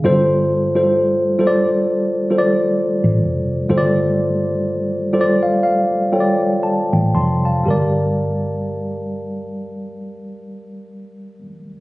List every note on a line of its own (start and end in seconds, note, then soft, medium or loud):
0.04 1.62 G1 medium
0.04 0.64 G3 medium
0.04 0.65 F4 medium
0.04 0.65 A4 medium
0.04 0.65 C5 loud
0.75 1.31 G3 medium
0.75 1.31 F4 medium
0.75 1.32 A4 medium
0.75 1.32 C5 medium
1.39 2.20 G3 medium
1.39 2.20 F4 medium
1.39 2.20 A4 medium
1.39 1.47 C5 medium
1.47 2.24 D5 medium
2.30 3.53 G3 medium
2.30 3.54 F4 medium
2.30 3.54 A4 medium
2.30 2.39 C5 medium
2.38 3.58 D5 medium
3.04 3.23 A1 medium
3.23 3.66 F1 medium
3.69 5.38 G1 medium
3.69 4.97 G3 medium
3.69 4.97 F4 medium
3.69 4.97 A4 medium
3.69 3.78 C5 medium
3.78 5.01 D5 loud
5.13 6.00 G3 medium
5.13 6.01 F4 medium
5.13 6.01 A4 medium
5.13 5.22 C5 medium
5.13 5.20 D5 medium
5.21 6.05 D5 medium
5.43 5.61 F5 medium
5.63 6.09 F5 medium
6.12 7.02 G3 medium
6.12 7.03 F4 medium
6.12 7.03 A4 medium
6.12 6.21 C#5 medium
6.12 6.59 G5 soft
6.20 7.06 D5 medium
6.63 7.11 A5 medium
6.93 7.12 A1 medium
6.93 7.13 G5 soft
7.15 7.62 F1 medium
7.15 7.43 A5 medium
7.15 7.43 C6 medium
7.45 7.95 F5 soft
7.45 7.95 A5 medium
7.63 11.41 G1 medium
7.63 11.38 G3 medium
7.63 11.40 G4 medium
7.68 11.43 A#4 medium
7.68 11.45 D5 medium